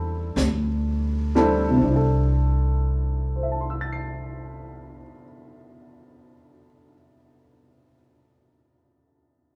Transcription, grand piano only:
0, 0, Header, 1, 2, 480
1, 0, Start_track
1, 0, Key_signature, 0, "major"
1, 0, Tempo, 1435407
1, 607, Time_signature, 4, 2, 24, 8
1, 607, Tempo, 1538462
1, 3022, End_track
2, 0, Start_track
2, 0, Title_t, "Grand piano"
2, 0, Program_c, 0, 0
2, 0, Control_c, 0, 64, 127
2, 0, Note_on_c, 0, 55, 76
2, 0, Note_on_c, 0, 60, 67
2, 0, Note_on_c, 0, 62, 66
2, 0, Note_on_c, 0, 64, 71
2, 0, Note_on_c, 0, 69, 80
2, 452, Note_off_c, 0, 55, 0
2, 452, Note_on_c, 0, 55, 77
2, 454, Note_off_c, 0, 60, 0
2, 454, Note_on_c, 0, 60, 70
2, 455, Note_off_c, 0, 62, 0
2, 455, Note_on_c, 0, 62, 67
2, 457, Note_off_c, 0, 64, 0
2, 457, Note_on_c, 0, 64, 69
2, 458, Note_off_c, 0, 69, 0
2, 458, Note_on_c, 0, 69, 84
2, 570, Note_on_c, 0, 48, 55
2, 586, Note_off_c, 0, 60, 0
2, 591, Note_on_c, 0, 60, 54
2, 592, Note_off_c, 0, 55, 0
2, 593, Note_off_c, 0, 62, 0
2, 594, Note_off_c, 0, 64, 0
2, 595, Note_off_c, 0, 69, 0
2, 611, Control_c, 0, 64, 0
2, 611, Note_on_c, 0, 62, 52
2, 631, Note_on_c, 0, 64, 51
2, 652, Note_on_c, 0, 69, 60
2, 662, Control_c, 0, 64, 127
2, 1089, Note_on_c, 0, 72, 38
2, 1111, Note_on_c, 0, 76, 37
2, 1138, Note_on_c, 0, 81, 36
2, 1166, Note_on_c, 0, 84, 35
2, 1195, Note_on_c, 0, 88, 34
2, 1230, Note_on_c, 0, 93, 34
2, 1265, Note_on_c, 0, 96, 30
2, 1590, Note_off_c, 0, 48, 0
2, 1609, Note_off_c, 0, 60, 0
2, 1629, Note_off_c, 0, 62, 0
2, 1648, Note_off_c, 0, 64, 0
2, 1669, Note_off_c, 0, 69, 0
2, 2094, Note_off_c, 0, 72, 0
2, 2115, Note_off_c, 0, 76, 0
2, 2143, Note_off_c, 0, 81, 0
2, 2171, Note_off_c, 0, 84, 0
2, 2200, Note_off_c, 0, 88, 0
2, 2235, Note_off_c, 0, 93, 0
2, 2270, Note_off_c, 0, 96, 0
2, 3022, End_track
0, 0, End_of_file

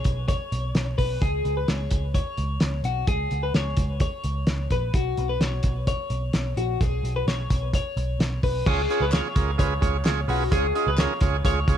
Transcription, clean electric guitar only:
0, 0, Header, 1, 2, 480
1, 0, Start_track
1, 0, Tempo, 464756
1, 1257, Time_signature, 4, 2, 24, 8
1, 12162, End_track
2, 0, Start_track
2, 0, Title_t, "Clean electric guitar"
2, 0, Program_c, 0, 27
2, 0, Note_on_c, 0, 73, 74
2, 264, Note_off_c, 0, 73, 0
2, 295, Note_on_c, 0, 73, 78
2, 975, Note_off_c, 0, 73, 0
2, 1012, Note_on_c, 0, 71, 66
2, 1255, Note_off_c, 0, 71, 0
2, 1256, Note_on_c, 0, 68, 74
2, 1595, Note_off_c, 0, 68, 0
2, 1622, Note_on_c, 0, 71, 67
2, 1739, Note_off_c, 0, 71, 0
2, 1739, Note_on_c, 0, 73, 76
2, 2190, Note_off_c, 0, 73, 0
2, 2219, Note_on_c, 0, 73, 73
2, 2898, Note_off_c, 0, 73, 0
2, 2944, Note_on_c, 0, 66, 56
2, 3181, Note_off_c, 0, 66, 0
2, 3185, Note_on_c, 0, 68, 88
2, 3522, Note_off_c, 0, 68, 0
2, 3544, Note_on_c, 0, 71, 64
2, 3662, Note_off_c, 0, 71, 0
2, 3669, Note_on_c, 0, 73, 75
2, 4117, Note_off_c, 0, 73, 0
2, 4147, Note_on_c, 0, 73, 76
2, 4824, Note_off_c, 0, 73, 0
2, 4874, Note_on_c, 0, 71, 65
2, 5109, Note_off_c, 0, 71, 0
2, 5114, Note_on_c, 0, 66, 71
2, 5448, Note_off_c, 0, 66, 0
2, 5467, Note_on_c, 0, 71, 71
2, 5593, Note_off_c, 0, 71, 0
2, 5593, Note_on_c, 0, 73, 86
2, 6040, Note_off_c, 0, 73, 0
2, 6072, Note_on_c, 0, 73, 84
2, 6748, Note_off_c, 0, 73, 0
2, 6791, Note_on_c, 0, 66, 60
2, 7035, Note_off_c, 0, 66, 0
2, 7035, Note_on_c, 0, 68, 76
2, 7369, Note_off_c, 0, 68, 0
2, 7397, Note_on_c, 0, 71, 62
2, 7511, Note_off_c, 0, 71, 0
2, 7518, Note_on_c, 0, 73, 71
2, 7964, Note_off_c, 0, 73, 0
2, 8005, Note_on_c, 0, 73, 78
2, 8674, Note_off_c, 0, 73, 0
2, 8715, Note_on_c, 0, 71, 66
2, 8950, Note_off_c, 0, 71, 0
2, 8958, Note_on_c, 0, 68, 90
2, 9290, Note_off_c, 0, 68, 0
2, 9318, Note_on_c, 0, 71, 85
2, 9424, Note_off_c, 0, 71, 0
2, 9428, Note_on_c, 0, 73, 100
2, 9876, Note_off_c, 0, 73, 0
2, 9911, Note_on_c, 0, 73, 90
2, 10584, Note_off_c, 0, 73, 0
2, 10638, Note_on_c, 0, 66, 69
2, 10869, Note_off_c, 0, 66, 0
2, 10874, Note_on_c, 0, 68, 90
2, 11205, Note_off_c, 0, 68, 0
2, 11236, Note_on_c, 0, 71, 79
2, 11348, Note_off_c, 0, 71, 0
2, 11358, Note_on_c, 0, 73, 84
2, 11799, Note_off_c, 0, 73, 0
2, 11833, Note_on_c, 0, 73, 94
2, 12162, Note_off_c, 0, 73, 0
2, 12162, End_track
0, 0, End_of_file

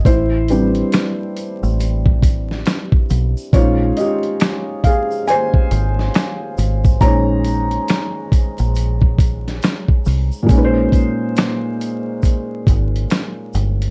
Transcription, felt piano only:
0, 0, Header, 1, 2, 480
1, 0, Start_track
1, 0, Tempo, 869565
1, 31, Time_signature, 4, 2, 24, 8
1, 7675, End_track
2, 0, Start_track
2, 0, Title_t, "Felt piano"
2, 0, Program_c, 0, 0
2, 0, Control_c, 0, 64, 127
2, 0, Note_on_c, 0, 75, 102
2, 31, Note_on_c, 0, 72, 82
2, 39, Control_c, 0, 64, 0
2, 39, Note_on_c, 0, 64, 68
2, 57, Note_off_c, 0, 75, 0
2, 148, Control_c, 0, 64, 127
2, 276, Note_on_c, 0, 71, 47
2, 277, Note_on_c, 0, 55, 57
2, 279, Note_on_c, 0, 60, 45
2, 282, Note_on_c, 0, 62, 54
2, 972, Note_off_c, 0, 55, 0
2, 972, Note_off_c, 0, 71, 0
2, 973, Note_off_c, 0, 60, 0
2, 975, Note_off_c, 0, 62, 0
2, 1449, Note_off_c, 0, 72, 0
2, 1453, Note_off_c, 0, 64, 0
2, 1952, Note_on_c, 0, 73, 95
2, 1956, Note_on_c, 0, 56, 60
2, 1958, Control_c, 0, 64, 0
2, 1960, Note_on_c, 0, 72, 56
2, 1961, Note_on_c, 0, 61, 59
2, 1964, Note_on_c, 0, 63, 70
2, 1964, Note_on_c, 0, 65, 74
2, 2054, Control_c, 0, 64, 127
2, 2175, Note_off_c, 0, 73, 0
2, 2181, Note_off_c, 0, 65, 0
2, 2192, Note_on_c, 0, 75, 78
2, 2207, Note_on_c, 0, 67, 58
2, 2649, Note_off_c, 0, 75, 0
2, 2652, Note_off_c, 0, 56, 0
2, 2653, Note_off_c, 0, 72, 0
2, 2654, Note_off_c, 0, 61, 0
2, 2655, Note_off_c, 0, 63, 0
2, 2657, Note_off_c, 0, 67, 0
2, 2672, Note_on_c, 0, 77, 90
2, 2688, Note_on_c, 0, 68, 74
2, 2903, Note_off_c, 0, 68, 0
2, 2912, Note_on_c, 0, 80, 104
2, 2919, Note_off_c, 0, 77, 0
2, 2926, Note_on_c, 0, 72, 86
2, 3849, Note_off_c, 0, 80, 0
2, 3857, Note_off_c, 0, 72, 0
2, 3870, Note_on_c, 0, 82, 106
2, 3876, Note_on_c, 0, 56, 59
2, 3880, Note_on_c, 0, 72, 55
2, 3882, Note_on_c, 0, 61, 52
2, 3883, Note_on_c, 0, 63, 65
2, 3884, Note_on_c, 0, 73, 79
2, 4572, Note_off_c, 0, 56, 0
2, 4574, Note_off_c, 0, 61, 0
2, 4574, Note_off_c, 0, 72, 0
2, 4575, Note_off_c, 0, 63, 0
2, 5288, Note_off_c, 0, 82, 0
2, 5295, Note_off_c, 0, 73, 0
2, 5756, Note_on_c, 0, 46, 75
2, 5776, Note_on_c, 0, 56, 73
2, 5798, Control_c, 0, 64, 0
2, 5800, Note_on_c, 0, 61, 73
2, 5821, Note_on_c, 0, 63, 66
2, 5838, Note_on_c, 0, 71, 71
2, 5859, Note_off_c, 0, 71, 0
2, 5876, Note_on_c, 0, 72, 89
2, 5909, Control_c, 0, 64, 127
2, 7672, Note_off_c, 0, 46, 0
2, 7675, Note_off_c, 0, 56, 0
2, 7675, Note_off_c, 0, 61, 0
2, 7675, Note_off_c, 0, 63, 0
2, 7675, Note_off_c, 0, 72, 0
2, 7675, End_track
0, 0, End_of_file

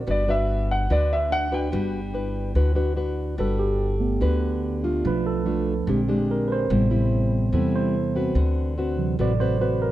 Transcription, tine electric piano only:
0, 0, Header, 1, 2, 480
1, 0, Start_track
1, 0, Key_signature, 1, "major"
1, 0, Tempo, 414651
1, 80, Time_signature, 4, 2, 24, 8
1, 11479, End_track
2, 0, Start_track
2, 0, Title_t, "Tine electric piano"
2, 0, Program_c, 0, 4
2, 0, Control_c, 0, 64, 127
2, 0, Note_on_c, 0, 66, 40
2, 14, Note_on_c, 0, 74, 38
2, 95, Control_c, 0, 64, 0
2, 286, Note_off_c, 0, 66, 0
2, 292, Control_c, 0, 64, 127
2, 435, Note_off_c, 0, 74, 0
2, 1509, Note_on_c, 0, 62, 48
2, 2476, Note_on_c, 0, 64, 35
2, 3295, Note_off_c, 0, 62, 0
2, 3935, Control_c, 0, 64, 0
2, 3936, Note_on_c, 0, 69, 56
2, 4113, Note_off_c, 0, 64, 0
2, 4140, Control_c, 0, 64, 127
2, 4158, Note_on_c, 0, 67, 57
2, 4162, Note_off_c, 0, 69, 0
2, 4606, Note_off_c, 0, 67, 0
2, 4632, Note_on_c, 0, 57, 40
2, 4643, Note_on_c, 0, 59, 45
2, 4956, Note_off_c, 0, 57, 0
2, 4962, Note_off_c, 0, 59, 0
2, 5843, Note_on_c, 0, 53, 43
2, 5850, Note_on_c, 0, 57, 37
2, 5854, Control_c, 0, 64, 0
2, 5854, Note_on_c, 0, 62, 46
2, 5870, Note_on_c, 0, 71, 63
2, 6088, Control_c, 0, 64, 127
2, 6089, Note_off_c, 0, 71, 0
2, 6093, Note_on_c, 0, 69, 62
2, 6161, Note_off_c, 0, 53, 0
2, 6165, Note_off_c, 0, 57, 0
2, 6167, Note_off_c, 0, 62, 0
2, 6534, Note_off_c, 0, 69, 0
2, 6810, Note_on_c, 0, 50, 39
2, 6818, Control_c, 0, 64, 0
2, 6818, Note_on_c, 0, 56, 37
2, 6822, Note_on_c, 0, 60, 47
2, 7032, Control_c, 0, 64, 127
2, 7307, Note_on_c, 0, 70, 57
2, 7497, Note_on_c, 0, 71, 49
2, 7525, Note_off_c, 0, 71, 0
2, 7527, Note_off_c, 0, 70, 0
2, 7550, Note_on_c, 0, 72, 73
2, 7719, Note_off_c, 0, 50, 0
2, 7723, Note_off_c, 0, 56, 0
2, 7725, Note_off_c, 0, 60, 0
2, 7766, Note_on_c, 0, 48, 38
2, 7770, Note_on_c, 0, 55, 36
2, 7773, Note_on_c, 0, 59, 46
2, 7775, Control_c, 0, 64, 0
2, 7992, Control_c, 0, 64, 127
2, 8083, Note_off_c, 0, 48, 0
2, 8085, Note_off_c, 0, 55, 0
2, 8087, Note_off_c, 0, 59, 0
2, 8209, Note_off_c, 0, 72, 0
2, 8717, Note_on_c, 0, 48, 36
2, 8723, Note_on_c, 0, 55, 34
2, 8724, Note_on_c, 0, 59, 38
2, 8738, Note_on_c, 0, 69, 41
2, 8935, Note_off_c, 0, 48, 0
2, 8938, Note_off_c, 0, 55, 0
2, 8938, Note_off_c, 0, 59, 0
2, 8962, Note_off_c, 0, 69, 0
2, 8978, Note_on_c, 0, 72, 62
2, 9643, Note_off_c, 0, 72, 0
2, 9695, Control_c, 0, 64, 0
2, 9901, Control_c, 0, 64, 127
2, 10383, Note_on_c, 0, 48, 41
2, 10390, Note_on_c, 0, 52, 37
2, 10399, Note_on_c, 0, 54, 37
2, 10664, Note_on_c, 0, 74, 59
2, 10710, Note_off_c, 0, 48, 0
2, 10714, Note_off_c, 0, 52, 0
2, 10719, Note_off_c, 0, 54, 0
2, 10884, Note_on_c, 0, 72, 67
2, 10885, Note_off_c, 0, 74, 0
2, 11115, Note_off_c, 0, 72, 0
2, 11130, Note_on_c, 0, 71, 63
2, 11358, Note_off_c, 0, 71, 0
2, 11366, Note_on_c, 0, 70, 65
2, 11479, Note_off_c, 0, 70, 0
2, 11479, End_track
0, 0, End_of_file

